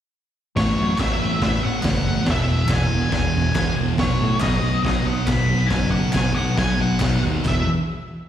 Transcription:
0.56 0.71 A1 medium
0.56 0.97 A2 medium
0.56 0.99 E3 loud
0.56 0.98 A3 loud
0.56 0.99 C#5 medium
0.56 kick loud
0.56 snare loud
0.56 open hi-hat medium
0.79 0.93 F#2 medium
0.98 1.14 A1 medium
0.98 1.18 A2 medium
0.98 1.19 E3 medium
0.98 1.19 A3 loud
0.98 1.42 E5 medium
0.98 kick loud
0.98 snare loud
0.98 clap medium
0.98 open hi-hat medium
1.19 1.36 A1 medium
1.19 1.38 A2 medium
1.19 1.38 E3 medium
1.19 1.39 A3 medium
1.39 1.56 A1 medium
1.39 1.81 A2 medium
1.39 1.82 E3 medium
1.39 1.82 A3 medium
1.39 kick loud
1.39 snare loud
1.39 open hi-hat medium
1.44 1.65 E5 medium
1.63 1.79 A1 medium
1.63 2.23 F#5 medium
1.82 2.13 F#1 medium
1.82 2.02 A2 medium
1.82 2.02 E3 medium
1.82 2.02 A3 loud
1.82 kick loud
1.82 snare loud
1.82 clap medium
1.82 open hi-hat medium
2.03 2.24 A2 medium
2.03 2.24 E3 medium
2.03 2.25 A3 medium
2.24 2.55 E1 medium
2.24 2.64 E2 loud
2.24 2.66 B2 loud
2.24 2.65 E3 loud
2.24 kick loud
2.24 snare loud
2.24 open hi-hat medium
2.30 2.72 E5 loud
2.65 2.86 E2 medium
2.65 2.87 B2 medium
2.65 2.87 E3 medium
2.65 clap loud
2.69 2.84 E1 medium
2.69 3.12 G#5 loud
2.69 kick loud
2.69 snare loud
2.69 open hi-hat medium
2.87 3.08 E2 medium
2.87 3.09 B2 medium
2.87 3.09 E3 medium
2.93 3.06 E1 medium
3.09 3.53 E2 medium
3.09 3.53 B2 medium
3.09 3.53 E3 loud
3.09 kick loud
3.09 snare loud
3.09 open hi-hat medium
3.13 3.27 E1 loud
3.13 3.73 G#5 medium
3.36 3.49 E1 medium
3.54 3.69 E1 medium
3.54 3.73 E2 medium
3.54 3.74 B2 medium
3.54 3.74 E3 medium
3.54 kick loud
3.54 snare loud
3.54 clap medium
3.54 open hi-hat medium
3.74 3.95 E2 medium
3.74 3.96 B2 medium
3.74 3.96 E3 loud
3.79 3.92 E1 medium
3.97 4.12 B1 medium
3.97 4.41 B2 medium
3.97 4.41 F#3 loud
3.97 4.41 B3 loud
3.97 4.40 C#5 medium
3.97 kick loud
3.97 snare loud
3.97 open hi-hat medium
4.21 4.35 A2 medium
4.40 4.55 B1 medium
4.40 4.61 B2 medium
4.40 4.61 F#3 medium
4.40 4.62 B3 loud
4.40 4.82 D#5 loud
4.40 kick loud
4.40 snare loud
4.40 clap loud
4.40 open hi-hat medium
4.61 4.77 B1 medium
4.61 4.81 B2 medium
4.61 4.82 F#3 medium
4.61 4.83 B3 medium
4.83 4.98 B1 medium
4.83 5.25 B2 loud
4.83 5.27 F#3 loud
4.83 5.27 B3 loud
4.83 5.05 D#5 medium
4.83 kick loud
4.83 snare loud
4.83 open hi-hat medium
5.05 5.20 B1 medium
5.05 5.28 F#5 loud
5.27 5.57 B1 medium
5.27 5.47 B2 medium
5.27 5.47 F#3 medium
5.27 5.49 B3 medium
5.27 5.71 B5 loud
5.27 kick loud
5.27 snare loud
5.27 clap medium
5.27 open hi-hat medium
5.48 5.68 B2 medium
5.48 5.68 F#3 medium
5.48 5.70 B3 medium
5.67 6.12 B2 loud
5.67 6.12 F#3 loud
5.67 5.88 G#5 loud
5.67 kick loud
5.67 snare loud
5.67 open hi-hat medium
5.71 6.00 F#1 medium
5.71 6.13 B3 loud
5.91 6.12 F#5 medium
6.13 6.29 B1 medium
6.13 6.34 B2 medium
6.13 6.35 F#3 medium
6.13 6.35 B3 loud
6.13 6.35 G#5 loud
6.13 kick loud
6.13 snare loud
6.13 clap loud
6.13 open hi-hat medium
6.35 6.50 B1 medium
6.35 6.55 B2 medium
6.35 6.56 F#3 medium
6.35 6.57 B3 medium
6.35 6.58 F#5 medium
6.56 6.72 B1 medium
6.56 6.98 B2 medium
6.56 6.99 F#3 loud
6.56 7.00 B3 loud
6.56 6.80 G#5 loud
6.56 kick loud
6.56 snare loud
6.56 open hi-hat medium
6.80 6.94 B1 medium
6.80 7.21 F#5 medium
7.00 7.16 B1 medium
7.00 7.21 B2 medium
7.00 7.22 F#3 medium
7.00 7.22 B3 loud
7.00 kick loud
7.00 snare loud
7.00 clap loud
7.00 open hi-hat medium
7.22 7.38 D#2 medium
7.22 7.43 B2 medium
7.22 7.43 F#3 medium
7.22 7.44 B3 loud
7.45 7.66 E1 medium
7.45 7.62 E2 medium
7.45 7.62 B2 loud
7.45 7.63 E3 loud
7.45 7.67 E5 medium
7.45 kick loud
7.45 clap medium
7.45 crash medium

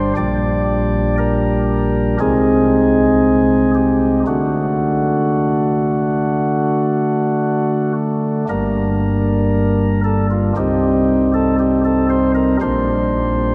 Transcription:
0.00 0.14 G1 medium
0.00 0.14 G2 medium
0.00 0.14 G3 medium
0.00 0.14 D4 medium
0.00 0.14 G4 medium
0.00 0.13 C5 loud
0.17 2.17 A#1 medium
0.17 2.17 A#2 medium
0.17 2.17 G3 medium
0.17 2.17 D4 medium
0.17 2.17 G4 medium
0.17 1.16 D5 loud
1.18 2.18 A#4 loud
2.20 4.24 C2 medium
2.20 4.23 C3 medium
2.20 4.23 G#3 medium
2.20 4.23 C4 medium
2.20 4.24 D#4 medium
2.20 3.71 G#4 loud
3.75 4.20 G4 loud
4.27 8.45 D3 medium
4.27 8.45 A3 medium
4.27 8.45 D4 medium
4.27 7.93 F#4 loud
8.49 10.53 G1 medium
8.49 10.52 G2 medium
8.49 10.53 G3 medium
8.49 10.53 A#3 medium
8.49 10.53 D4 medium
8.49 10.01 A#4 loud
10.04 10.27 A4 loud
10.31 10.53 F4 medium
10.56 12.57 C2 medium
10.56 12.57 C3 medium
10.56 12.57 G3 medium
10.56 12.57 C4 medium
10.56 12.57 D#4 medium
10.56 11.31 G4 loud
11.34 11.56 A4 loud
11.59 11.81 G4 loud
11.85 12.06 A4 medium
12.10 12.32 C5 loud
12.35 12.57 A#4 loud
12.61 13.55 A#1 medium
12.61 13.55 A#2 medium
12.61 13.55 G3 medium
12.61 13.55 D4 medium
12.61 13.55 C5 loud

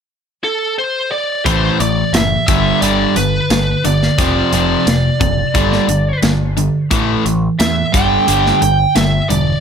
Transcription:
0.44 0.75 A4 medium
0.79 1.10 C5 medium
1.12 1.45 D5 medium
1.45 1.68 A1 medium
1.45 1.78 A2 medium
1.45 1.78 E3 medium
1.45 1.78 A3 medium
1.45 1.80 C5 medium
1.45 kick loud
1.45 closed hi-hat medium
1.80 2.03 A1 medium
1.80 2.11 A2 medium
1.80 2.11 E3 medium
1.80 2.15 D5 medium
1.80 closed hi-hat medium
2.13 2.36 F#1 medium
2.13 2.45 A2 medium
2.13 2.45 E3 medium
2.13 2.46 E5 medium
2.13 snare loud
2.13 closed hi-hat medium
2.47 2.71 G1 medium
2.47 2.80 G2 medium
2.47 2.81 D3 medium
2.47 2.81 G3 medium
2.47 2.79 E5 medium
2.47 kick loud
2.47 closed hi-hat medium
2.81 3.05 G1 medium
2.81 3.14 G2 medium
2.81 3.15 D3 medium
2.81 3.15 G3 medium
2.81 3.13 D5 medium
2.81 closed hi-hat medium
3.16 3.39 G1 medium
3.16 3.47 G2 medium
3.16 3.48 D3 medium
3.16 3.85 B4 medium
3.16 closed hi-hat medium
3.50 3.73 G1 medium
3.50 3.81 G2 medium
3.50 3.81 D3 medium
3.50 snare loud
3.50 closed hi-hat medium
3.84 4.08 G1 medium
3.84 4.15 G2 medium
3.84 4.15 D3 medium
3.84 4.18 D5 medium
3.84 closed hi-hat medium
4.03 snare soft
4.18 4.41 F1 medium
4.18 4.50 F2 medium
4.18 4.51 C3 medium
4.18 4.51 F3 medium
4.18 6.20 D5 medium
4.18 kick loud
4.18 closed hi-hat medium
4.52 4.75 F1 medium
4.52 4.85 F2 medium
4.52 4.85 C3 medium
4.52 4.85 F3 medium
4.52 closed hi-hat medium
4.86 5.09 F1 medium
4.86 5.17 F2 medium
4.86 5.18 C3 medium
4.86 snare loud
4.86 closed hi-hat medium
5.20 5.43 F#1 medium
5.20 5.51 F2 medium
5.20 5.51 C3 medium
5.20 kick medium
5.20 closed hi-hat medium
5.54 5.78 G1 medium
5.54 5.87 G2 medium
5.54 5.87 D3 medium
5.54 5.87 G3 medium
5.54 kick loud
5.54 closed hi-hat medium
5.72 snare soft
5.88 6.11 G1 medium
5.88 6.20 G2 medium
5.88 6.20 D3 medium
5.88 closed hi-hat medium
6.22 6.68 G1 medium
6.22 6.54 G2 medium
6.22 6.54 D3 medium
6.22 snare loud
6.22 closed hi-hat medium
6.57 6.88 G2 medium
6.57 6.88 D3 medium
6.57 closed hi-hat medium
6.91 7.14 A1 medium
6.91 7.23 A2 medium
6.91 7.23 E3 medium
6.91 7.24 A3 medium
6.91 kick loud
6.91 closed hi-hat medium
7.25 7.48 A1 medium
7.25 7.56 A2 medium
7.25 7.57 E3 medium
7.25 closed hi-hat medium
7.59 7.83 E2 medium
7.59 7.91 A2 medium
7.59 7.91 E3 medium
7.59 7.95 E5 medium
7.59 snare loud
7.59 closed hi-hat medium
7.92 8.17 G1 medium
7.92 8.26 G2 medium
7.92 8.26 D3 medium
7.92 8.27 G3 medium
7.92 8.61 G5 loud
7.92 kick loud
7.92 closed hi-hat medium
8.28 8.51 G1 medium
8.28 8.60 G2 medium
8.28 8.60 D3 medium
8.28 8.60 G3 medium
8.28 closed hi-hat medium
8.46 snare soft
8.62 8.85 G1 medium
8.62 8.93 G2 medium
8.62 8.93 D3 medium
8.62 8.94 G5 medium
8.62 closed hi-hat medium
8.95 9.19 G1 medium
8.95 9.26 G2 medium
8.95 9.27 D3 medium
8.95 9.28 E5 medium
8.95 snare medium
8.95 closed hi-hat medium
9.29 9.53 E1 medium
9.29 9.60 G2 medium
9.29 9.60 D3 medium
9.29 9.60 D5 medium
9.29 closed hi-hat medium

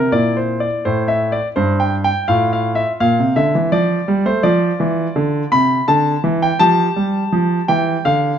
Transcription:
0.00 0.11 C3 soft
0.00 0.12 A#4 medium
0.12 0.64 A#2 soft
0.12 2.25 E4 soft
0.12 0.36 D5 medium
0.37 0.58 C5 soft
0.60 0.84 D5 soft
0.85 1.37 A2 soft
0.85 1.06 C5 medium
1.08 1.32 E5 soft
1.32 1.47 D5 medium
1.56 2.08 G2 soft
1.56 1.80 C5 medium
1.80 1.94 G5 medium
2.04 2.26 G5 medium
2.28 2.81 A2 soft
2.28 4.40 F4 soft
2.28 2.50 F5 medium
2.53 2.74 F5 medium
2.75 2.90 E5 medium
3.00 3.18 A#2 soft
3.00 3.37 F5 medium
3.19 3.36 C3 soft
3.36 3.54 D3 soft
3.36 3.69 E5 medium
3.55 3.72 E3 soft
3.72 3.98 F3 soft
3.72 4.26 D5 medium
4.08 4.25 G3 soft
4.26 4.43 A3 soft
4.26 4.44 C5 medium
4.43 4.70 F3 medium
4.43 6.56 F4 soft
4.43 5.48 D5 medium
4.80 5.06 E3 soft
5.16 5.42 D3 soft
5.52 5.78 C3 soft
5.52 5.85 B5 medium
5.88 6.14 D3 medium
5.88 6.20 A5 medium
6.24 6.50 E3 medium
6.42 6.60 G5 medium
6.59 6.86 F3 medium
6.59 8.38 G4 soft
6.59 7.68 A5 medium
6.96 7.22 G3 soft
7.32 7.59 F3 soft
7.68 7.96 E3 soft
7.68 8.06 G5 medium
8.05 8.32 D3 medium
8.05 8.38 F5 medium

